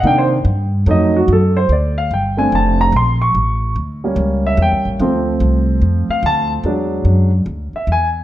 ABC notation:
X:1
M:4/4
L:1/16
Q:"Swing" 1/4=146
K:Bb
V:1 name="Grand piano"
g c z6 e2 _G2 A2 c2 | d2 f2 g2 _a2 =a2 b2 c'2 _d'2- | _d'4 z6 =e2 g2 z2 | z8 z2 f2 a2 z2 |
z8 z2 =e2 ^g2 z2 |]
V:2 name="Grand piano"
[E,B,D]2 z6 [_G,A,E]2 z6 | z6 [A,CD]6 z4 | z6 [G,B,^C]8- [G,B,C]2 | [F,A,C]16 |
[^F,^G,D]6 z8 z2 |]
V:3 name="Upright bass" clef=bass
C,4 G,,4 F,,4 _G,,4 | D,,4 G,,,4 F,,,4 B,,,4 | A,,,4 D,,4 ^C,,4 (3=E,,2 C,,2 A,,,2 | D,,4 C,,4 F,,2 z2 D,,4 |
=E,,4 ^F,,4 D,,2 z2 E,,4 |]